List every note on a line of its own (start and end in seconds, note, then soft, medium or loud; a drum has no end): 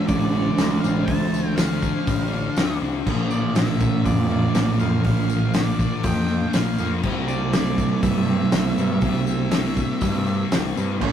0.00 3.02 D3 medium
0.00 3.06 D3 medium
0.00 3.06 F3 medium
0.00 3.07 A3 medium
0.00 3.02 C4 medium
0.00 0.11 D4 medium
0.00 3.07 D4 medium
0.00 7.00 D4 medium
0.00 7.00 F4 medium
0.00 3.02 C5 medium
0.07 0.50 A1 loud
0.07 0.58 D3 medium
0.07 0.35 A3 medium
0.07 0.80 D5 medium
0.07 kick loud
0.07 open hi-hat medium
0.07 tambourine medium
0.12 0.33 D4 loud
0.33 0.85 A3 medium
0.33 0.83 D4 medium
0.58 0.79 D2 loud
0.58 snare loud
0.58 open hi-hat medium
0.58 tambourine loud
0.81 1.04 A1 loud
0.81 1.10 D4 medium
0.81 1.07 F5 medium
0.81 tambourine medium
0.87 1.08 A3 medium
1.05 1.90 D2 medium
1.05 1.56 D3 medium
1.05 1.47 A5 loud
1.05 kick loud
1.05 open hi-hat medium
1.05 tambourine soft
1.10 1.58 A3 loud
1.10 1.60 D4 loud
1.34 tambourine medium
1.47 1.58 G5 loud
1.56 2.05 D3 medium
1.56 2.07 A3 medium
1.56 2.77 F5 medium
1.56 snare loud
1.56 open hi-hat medium
1.56 tambourine loud
1.60 2.09 D4 medium
1.83 kick medium
1.83 tambourine medium
2.06 2.48 A1 loud
2.06 2.56 D3 medium
2.06 2.33 A3 medium
2.06 2.32 D4 loud
2.06 kick loud
2.06 open hi-hat medium
2.06 tambourine medium
2.32 2.84 A3 medium
2.32 2.82 D4 medium
2.32 tambourine soft
2.56 2.77 D2 loud
2.56 snare loud
2.56 open hi-hat medium
2.56 tambourine medium
2.82 3.02 C2 medium
2.82 3.07 A3 medium
2.82 3.08 D4 medium
3.06 3.89 A#1 medium
3.06 3.55 A#2 medium
3.06 7.04 A#2 medium
3.06 7.03 D3 medium
3.06 3.56 F3 medium
3.06 7.04 F3 medium
3.06 7.05 A#3 medium
3.06 3.58 A#3 loud
3.06 7.05 D4 medium
3.06 10.98 A#4 medium
3.06 kick medium
3.06 crash medium
3.31 3.56 D5 medium
3.31 tambourine medium
3.55 4.04 A#2 medium
3.55 4.06 F3 medium
3.55 4.07 A#3 medium
3.55 4.06 E5 medium
3.55 snare loud
3.55 open hi-hat medium
3.55 tambourine medium
3.80 kick medium
3.80 tambourine medium
4.05 4.47 F2 loud
4.05 4.55 A#2 medium
4.05 4.31 F3 loud
4.05 4.29 A#3 loud
4.05 4.80 D5 medium
4.05 kick loud
4.05 open hi-hat medium
4.05 tambourine medium
4.29 4.80 F3 medium
4.29 4.78 A#3 medium
4.29 tambourine soft
4.55 4.76 A#1 loud
4.55 snare loud
4.55 open hi-hat medium
4.55 tambourine loud
4.79 5.01 F2 medium
4.79 5.04 F3 medium
4.79 5.06 A#3 medium
4.79 5.04 F5 medium
4.79 tambourine medium
5.04 5.87 A#1 medium
5.04 5.52 A#2 medium
5.04 5.54 F3 medium
5.04 5.56 A#3 loud
5.04 5.55 F5 loud
5.04 kick medium
5.04 open hi-hat medium
5.30 tambourine medium
5.54 6.03 A#2 medium
5.54 6.04 F3 medium
5.54 6.06 A#3 medium
5.54 6.06 D5 medium
5.54 snare loud
5.54 open hi-hat medium
5.54 tambourine loud
5.79 kick medium
5.79 tambourine medium
6.03 6.46 F2 loud
6.03 6.54 A#2 medium
6.03 6.30 F3 loud
6.03 6.27 A#3 loud
6.03 6.56 G5 loud
6.03 kick loud
6.03 open hi-hat medium
6.03 tambourine medium
6.28 6.80 F3 medium
6.28 6.78 A#3 medium
6.28 tambourine soft
6.53 6.75 A#1 loud
6.53 6.90 F5 medium
6.53 snare loud
6.53 open hi-hat medium
6.53 tambourine medium
6.78 7.00 F2 loud
6.78 7.03 F3 medium
6.78 7.05 A#3 medium
6.78 tambourine medium
7.02 7.86 C2 medium
7.02 7.52 C3 loud
7.02 11.01 C3 medium
7.02 10.97 C3 medium
7.02 7.54 G3 medium
7.02 11.01 G3 medium
7.02 11.01 A#3 medium
7.02 10.97 C4 medium
7.02 7.55 C4 loud
7.02 10.97 D4 medium
7.02 10.97 E4 medium
7.02 11.02 E4 medium
7.02 kick loud
7.02 crash medium
7.28 8.03 D5 loud
7.28 tambourine medium
7.53 8.01 C3 medium
7.53 8.02 G3 medium
7.53 8.03 C4 medium
7.53 snare loud
7.53 open hi-hat medium
7.53 tambourine medium
7.78 kick medium
7.78 tambourine medium
8.02 8.44 G2 loud
8.02 8.52 C3 loud
8.02 8.29 G3 loud
8.02 8.26 C4 loud
8.02 8.75 E5 loud
8.02 kick loud
8.02 open hi-hat medium
8.02 tambourine medium
8.27 8.79 G3 medium
8.27 8.76 C4 medium
8.27 tambourine soft
8.52 8.73 C2 loud
8.52 snare loud
8.52 open hi-hat medium
8.52 tambourine medium
8.77 8.98 G2 medium
8.77 9.02 G3 medium
8.77 9.03 C4 medium
8.77 10.47 E5 loud
8.77 tambourine medium
9.01 9.84 C2 medium
9.01 9.50 C3 medium
9.01 9.51 G3 medium
9.01 9.53 C4 medium
9.01 kick medium
9.01 open hi-hat medium
9.01 tambourine soft
9.27 tambourine medium
9.51 10.01 C3 medium
9.51 10.02 G3 medium
9.51 10.04 C4 medium
9.51 snare loud
9.51 open hi-hat medium
9.51 tambourine loud
9.76 kick medium
9.76 tambourine medium
10.01 10.43 G2 loud
10.01 10.51 C3 medium
10.01 10.28 G3 loud
10.01 10.25 C4 loud
10.01 kick loud
10.01 open hi-hat medium
10.01 tambourine medium
10.26 10.78 G3 medium
10.26 10.75 C4 medium
10.26 tambourine soft
10.52 10.72 C2 loud
10.52 snare loud
10.52 open hi-hat medium
10.52 tambourine medium
10.76 10.97 G2 medium
10.76 11.01 G3 medium
10.76 10.99 C4 medium
10.76 tambourine medium
11.01 11.12 A#1 medium
11.01 11.12 A#2 medium
11.01 11.12 D3 medium
11.01 11.12 F3 medium
11.01 11.12 A#3 loud
11.01 11.12 A#3 medium
11.01 11.12 D4 medium
11.01 11.12 A#4 medium
11.01 11.12 D5 medium
11.01 kick medium
11.01 crash medium